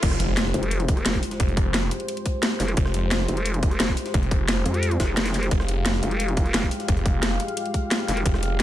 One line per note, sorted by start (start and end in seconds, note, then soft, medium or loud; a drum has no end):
0.03 0.53 F1 medium
0.03 8.63 G#3 medium
0.03 8.63 F4 medium
0.03 8.63 G4 medium
0.03 5.49 C5 medium
0.03 kick loud
0.03 closed hi-hat medium
0.03 crash loud
0.03 impact medium
0.11 cross-stick medium
0.11 snare soft
0.20 closed hi-hat medium
0.37 snare loud
0.37 closed hi-hat medium
0.37 closed hi-hat loud
0.46 snare medium
0.54 1.04 F1 loud
0.54 closed hi-hat medium
0.63 closed hi-hat soft
0.71 closed hi-hat medium
0.71 closed hi-hat loud
0.80 closed hi-hat soft
0.88 kick loud
0.88 closed hi-hat medium
0.97 cross-stick soft
0.97 closed hi-hat soft
1.06 1.21 F1 medium
1.06 snare loud
1.06 closed hi-hat medium
1.06 closed hi-hat loud
1.14 kick medium
1.14 snare medium
1.23 closed hi-hat medium
1.23 open hi-hat medium
1.31 snare soft
1.31 closed hi-hat soft
1.40 1.90 F1 loud
1.40 kick loud
1.40 closed hi-hat medium
1.48 closed hi-hat soft
1.57 kick loud
1.57 closed hi-hat medium
1.74 snare loud
1.74 closed hi-hat loud
1.74 closed hi-hat medium
1.91 closed hi-hat medium
2.00 closed hi-hat soft
2.08 closed hi-hat medium
2.17 closed hi-hat soft
2.26 kick medium
2.26 closed hi-hat medium
2.43 snare loud
2.43 closed hi-hat medium
2.60 2.76 F1 medium
2.60 snare soft
2.60 closed hi-hat medium
2.60 open hi-hat medium
2.68 cross-stick medium
2.68 closed hi-hat soft
2.77 3.27 F1 loud
2.77 kick loud
2.77 closed hi-hat medium
2.86 cross-stick medium
2.86 snare soft
2.94 closed hi-hat medium
3.11 snare loud
3.11 closed hi-hat medium
3.20 snare medium
3.28 3.78 F1 loud
3.28 closed hi-hat medium
3.37 closed hi-hat soft
3.46 closed hi-hat medium
3.54 closed hi-hat soft
3.63 kick loud
3.63 closed hi-hat medium
3.71 cross-stick soft
3.71 closed hi-hat soft
3.80 3.96 F1 medium
3.80 snare loud
3.80 closed hi-hat medium
3.88 kick medium
3.88 snare medium
3.97 closed hi-hat medium
3.97 open hi-hat medium
4.06 snare soft
4.06 closed hi-hat soft
4.14 4.64 F1 loud
4.14 kick loud
4.14 closed hi-hat medium
4.23 closed hi-hat soft
4.31 kick loud
4.31 closed hi-hat medium
4.48 snare loud
4.48 closed hi-hat medium
4.66 4.98 F2 loud
4.66 closed hi-hat medium
4.74 closed hi-hat soft
4.83 closed hi-hat medium
4.91 closed hi-hat soft
5.00 5.50 F1 loud
5.00 kick medium
5.00 snare loud
5.00 closed hi-hat medium
5.17 snare loud
5.17 closed hi-hat medium
5.26 snare loud
5.26 closed hi-hat medium
5.34 snare soft
5.34 open hi-hat medium
5.43 cross-stick soft
5.43 closed hi-hat soft
5.43 closed hi-hat medium
5.51 6.01 F1 loud
5.51 8.63 F5 medium
5.51 kick loud
5.51 closed hi-hat medium
5.60 cross-stick medium
5.60 snare soft
5.68 closed hi-hat medium
5.86 snare loud
5.86 closed hi-hat medium
5.94 snare medium
6.03 6.53 F1 loud
6.03 closed hi-hat medium
6.11 closed hi-hat soft
6.20 closed hi-hat medium
6.28 closed hi-hat soft
6.37 kick loud
6.37 closed hi-hat medium
6.46 cross-stick soft
6.46 closed hi-hat soft
6.54 6.70 F1 loud
6.54 snare loud
6.54 closed hi-hat medium
6.63 kick medium
6.63 snare medium
6.71 closed hi-hat medium
6.71 open hi-hat medium
6.80 snare soft
6.80 closed hi-hat soft
6.88 7.38 F1 loud
6.88 kick loud
6.88 closed hi-hat medium
6.97 closed hi-hat soft
7.06 kick loud
7.06 closed hi-hat medium
7.23 snare loud
7.23 closed hi-hat loud
7.23 closed hi-hat medium
7.40 closed hi-hat medium
7.48 closed hi-hat soft
7.57 closed hi-hat medium
7.66 closed hi-hat soft
7.74 kick medium
7.74 closed hi-hat medium
7.91 snare loud
7.91 closed hi-hat medium
8.08 8.24 F1 medium
8.08 snare soft
8.08 closed hi-hat medium
8.08 open hi-hat medium
8.17 cross-stick soft
8.17 closed hi-hat soft
8.26 8.63 F1 loud
8.26 kick loud
8.26 closed hi-hat loud
8.26 closed hi-hat medium
8.34 cross-stick medium
8.34 snare soft
8.43 closed hi-hat medium